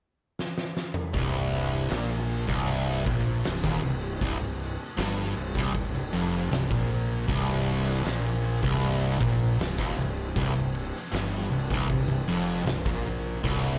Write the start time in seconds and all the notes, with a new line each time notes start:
0.39 snare
0.58 snare
0.77 snare
0.94 mid tom
1.13 C1 C2, kick, crash
1.52 crash
1.90 A#1 A#2, snare, crash
2.29 crash
2.47 C1 C2, kick
2.68 crash
3.06 A#1 A#2, kick, crash
3.44 C1 C2, snare, crash
3.63 D#1 D#2, kick
3.83 C1 C2, crash
4.21 C1 C2, kick, crash
4.39 C1 C2
4.60 crash
4.97 G1 G2, snare, crash
5.35 C1 C2, crash
5.55 C1 C2, kick
5.74 C1 C2, kick, crash
5.94 C1 C2
6.12 F1 F2, crash
6.50 C1 C2, snare, crash
6.71 A#1 A#2, kick
6.90 crash
7.28 C1 C2, kick, crash
7.67 crash
8.04 A#1 A#2, snare, crash
8.44 crash
8.63 C1 C2, kick
8.83 crash
9.20 A#1 A#2, kick, crash
9.58 C1 C2, snare, crash
9.78 D#1 D#2, kick
9.96 C1 C2, snare, crash
10.36 C1 C2, kick, crash
10.55 C1 C2
10.75 crash
10.95 snare
11.12 G1 G2, snare, crash
11.51 C1 C2, crash
11.70 C1 C2, kick
11.89 C1 C2, kick, crash
12.08 C1 C2
12.28 F1 F2, crash
12.65 C1 C2, snare, crash
12.85 A#1 A#2, kick
13.05 crash
13.43 C1 C2, kick, crash